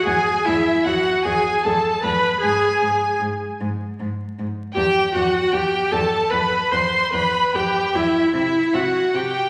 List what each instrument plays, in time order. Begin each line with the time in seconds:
0.04 cello E2, viola G#4, violin G#5
0.45 cello E2, viola E4, violin E5
0.84 cello E2, viola F#4, violin F#5
1.23 cello E2, viola G#4, violin G#5
1.64 cello E2, viola A4, violin A5
2.03 cello E2, viola B4, violin B5
2.40 cello G#2, viola G#4, violin G#5
2.82 cello G#2
3.21 cello G#2
3.61 cello G#2
4.00 cello G#2
4.39 cello G#2
4.74 cello E2, viola G4, violin G5
5.14 cello E2, viola F#4, violin F#5
5.52 cello E2, viola G4, violin G5
5.91 cello E2, viola A4, violin A5
6.30 cello E2, viola B4, violin B5
6.71 cello E2, viola C5, violin C6
7.12 cello E2, viola B4, violin B5
7.54 cello E2, viola G4, violin G5
7.95 cello E2, viola E4, violin E5
8.34 cello C3, viola E4, violin E5
8.73 cello C3, viola F#4, violin F#5
9.14 cello C3, viola G4, violin G5